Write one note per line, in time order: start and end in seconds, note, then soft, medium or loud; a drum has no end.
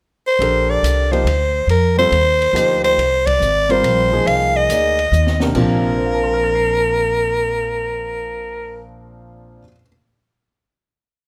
0.27 0.72 C5 medium
0.39 0.81 A#1 medium
0.39 1.06 D4 soft
0.39 1.07 G4 soft
0.39 1.06 A4 medium
0.39 1.07 A#4 medium
0.39 ride soft
0.70 1.14 D5 medium
0.83 1.24 C2 medium
0.83 hi-hat pedal medium
0.83 ride medium
1.11 1.25 F3 medium
1.11 1.25 A#3 medium
1.11 1.25 D#4 medium
1.11 1.25 G4 medium
1.11 1.69 C5 medium
1.11 ride soft
1.25 1.66 D2 medium
1.25 ride medium
1.67 2.10 F2 medium
1.67 1.97 A#4 medium
1.67 ride soft
1.97 2.10 G3 medium
1.97 2.11 C4 medium
1.97 2.11 F4 medium
1.97 2.11 A4 medium
1.97 2.80 C5 medium
2.12 2.52 D#2 medium
2.12 ride soft
2.42 ride soft
2.53 2.95 D2 medium
2.53 2.97 F3 medium
2.53 2.97 A#3 medium
2.53 2.98 D#4 medium
2.53 2.98 G4 medium
2.53 hi-hat pedal soft
2.53 ride medium
2.84 3.28 C5 medium
2.84 ride soft
2.98 3.39 C2 medium
2.98 ride soft
3.26 3.73 D5 loud
3.26 kick medium
3.26 ride medium
3.40 3.82 G#1 medium
3.40 hi-hat pedal soft
3.69 4.09 G3 medium
3.69 4.09 C4 medium
3.69 4.10 F4 medium
3.69 4.10 A#4 medium
3.69 4.29 C5 medium
3.69 ride soft
3.83 4.24 A#1 medium
3.83 ride medium
4.12 4.66 F3 medium
4.12 4.66 A#3 soft
4.12 4.67 D#4 medium
4.12 4.67 G#4 medium
4.25 4.67 C2 medium
4.25 4.58 F5 medium
4.25 ride soft
4.57 5.42 D#5 medium
4.69 5.11 D2 medium
4.69 4.96 A#3 medium
4.69 4.96 D#4 soft
4.69 4.96 G#4 soft
4.69 4.96 D5 medium
4.69 hi-hat pedal medium
4.69 ride medium
4.99 ride soft
5.12 5.53 D#2 medium
5.12 hi-hat pedal medium
5.27 snare soft
5.40 5.95 C3 medium
5.40 5.95 A#3 medium
5.40 5.55 D4 soft
5.40 5.96 G4 medium
5.40 5.96 A#4 medium
5.40 snare medium
5.54 9.57 A#1 medium
5.54 9.60 A#2 medium
5.54 9.61 F3 medium
5.54 9.61 C4 medium
5.54 9.62 D4 medium
5.54 9.63 F4 medium
5.54 8.88 A#4 medium
5.54 kick soft
5.54 crash medium
5.98 9.58 C5 soft
6.06 9.62 F5 soft
6.14 9.66 A5 soft
6.23 9.70 C6 soft
6.34 9.75 F6 soft
6.44 9.80 A6 soft
6.55 9.86 C7 soft